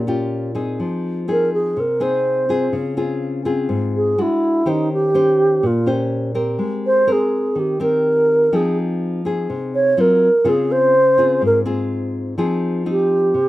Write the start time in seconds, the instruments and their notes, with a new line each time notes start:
Already playing: nylon-string guitar A#2
0.07 nylon-string guitar C#4 F4 G4
0.55 nylon-string guitar C4 D#4 G#4
0.80 nylon-string guitar F3
1.28 nylon-string guitar C4 D#4 G#4, alto flute A#4
1.54 alto flute G#4
1.77 nylon-string guitar C3, alto flute A#4
2.00 nylon-string guitar C4 D#4 G#4, alto flute C5
2.49 nylon-string guitar C4 F4 G#4
2.73 nylon-string guitar C#3
2.97 nylon-string guitar C4 F4 G#4
3.45 nylon-string guitar C4 F4 G#4
3.69 nylon-string guitar G#2
3.96 alto flute G#4
4.18 nylon-string guitar G#3 D4 F#4, alto flute E4
4.66 nylon-string guitar D#3 C#4 G4 C5, alto flute D#4
4.93 alto flute G4
5.14 nylon-string guitar C#4 G4 C5
5.63 nylon-string guitar A#2, alto flute F4
5.86 nylon-string guitar C#4 G4 C5
6.35 nylon-string guitar C4 G4 A#4
6.59 nylon-string guitar G#3
6.86 alto flute C5
7.07 nylon-string guitar C4 A#4
7.12 alto flute G#4
7.55 nylon-string guitar D#3, alto flute G4
7.80 nylon-string guitar C4 G4 A#4, alto flute A#4
8.52 nylon-string guitar F3 C4 D#4 G#4, alto flute G#4
9.25 nylon-string guitar C4 D#4 G#4
9.50 nylon-string guitar C3
9.75 alto flute C#5
9.97 nylon-string guitar F#3 C4 F4, alto flute A#4
10.44 nylon-string guitar C#3 C4 F4 G#4
10.49 alto flute G#4
10.72 alto flute C5
11.18 nylon-string guitar C4 F4 G#4
11.42 nylon-string guitar G#2
11.46 alto flute A#4
11.66 nylon-string guitar C4 F4 G#4
12.38 nylon-string guitar F3 C4 D#4 G#4
12.86 nylon-string guitar C4 D#4
12.91 alto flute G4
13.34 nylon-string guitar C3